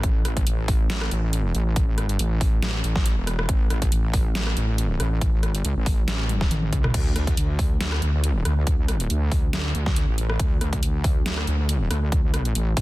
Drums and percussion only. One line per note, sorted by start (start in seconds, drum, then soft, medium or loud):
0.03 kick loud
0.03 closed hi-hat medium
0.25 cross-stick medium
0.25 closed hi-hat medium
0.37 kick medium
0.37 closed hi-hat medium
0.47 closed hi-hat medium
0.68 kick loud
0.68 open hi-hat medium
0.90 snare loud
0.90 closed hi-hat medium
1.01 cross-stick medium
1.11 closed hi-hat soft
1.33 closed hi-hat medium
1.55 closed hi-hat medium
1.76 kick loud
1.76 closed hi-hat medium
1.98 cross-stick medium
1.98 closed hi-hat soft
2.09 closed hi-hat medium
2.19 closed hi-hat medium
2.41 kick loud
2.41 open hi-hat medium
2.62 snare loud
2.62 closed hi-hat medium
2.84 closed hi-hat soft
2.96 kick loud
2.96 snare soft
3.06 closed hi-hat medium
3.27 cross-stick medium
3.27 closed hi-hat medium
3.39 cross-stick medium
3.49 kick loud
3.49 closed hi-hat medium
3.70 cross-stick medium
3.70 closed hi-hat medium
3.82 kick medium
3.82 closed hi-hat medium
3.92 closed hi-hat medium
4.13 kick loud
4.13 open hi-hat loud
4.35 snare loud
4.35 closed hi-hat medium
4.47 cross-stick medium
4.57 closed hi-hat medium
4.78 closed hi-hat medium
5.00 cross-stick medium
5.00 closed hi-hat medium
5.21 kick loud
5.21 closed hi-hat medium
5.43 cross-stick medium
5.43 closed hi-hat medium
5.55 closed hi-hat medium
5.65 closed hi-hat medium
5.86 kick loud
5.86 open hi-hat loud
6.08 snare loud
6.08 closed hi-hat medium
6.29 closed hi-hat medium
6.29 high tom medium
6.41 kick loud
6.41 snare soft
6.51 closed hi-hat medium
6.51 mid tom medium
6.63 mid tom medium
6.73 kick medium
6.73 closed hi-hat medium
6.84 cross-stick medium
6.84 mid tom medium
6.94 kick loud
6.94 closed hi-hat medium
6.94 crash medium
7.16 cross-stick medium
7.16 closed hi-hat medium
7.27 kick medium
7.27 closed hi-hat medium
7.37 closed hi-hat medium
7.59 kick loud
7.59 open hi-hat loud
7.81 snare loud
7.81 closed hi-hat medium
7.92 cross-stick medium
8.02 closed hi-hat medium
8.24 closed hi-hat medium
8.45 cross-stick medium
8.45 closed hi-hat medium
8.67 kick loud
8.67 closed hi-hat medium
8.88 cross-stick medium
8.88 closed hi-hat medium
9.00 closed hi-hat medium
9.10 closed hi-hat medium
9.32 kick loud
9.32 open hi-hat medium
9.53 snare loud
9.53 closed hi-hat medium
9.75 closed hi-hat medium
9.86 kick loud
9.86 snare soft
9.96 closed hi-hat medium
10.18 closed hi-hat medium
10.30 cross-stick medium
10.39 kick loud
10.39 closed hi-hat medium
10.61 cross-stick medium
10.61 closed hi-hat medium
10.73 kick medium
10.73 closed hi-hat medium
10.83 closed hi-hat medium
11.04 kick loud
11.04 open hi-hat medium
11.26 snare loud
11.26 closed hi-hat medium
11.37 cross-stick medium
11.47 closed hi-hat medium
11.69 closed hi-hat medium
11.91 cross-stick medium
11.91 closed hi-hat medium
12.12 kick loud
12.12 closed hi-hat medium
12.34 cross-stick medium
12.34 closed hi-hat medium
12.45 closed hi-hat medium
12.55 closed hi-hat medium
12.77 kick loud
12.77 open hi-hat medium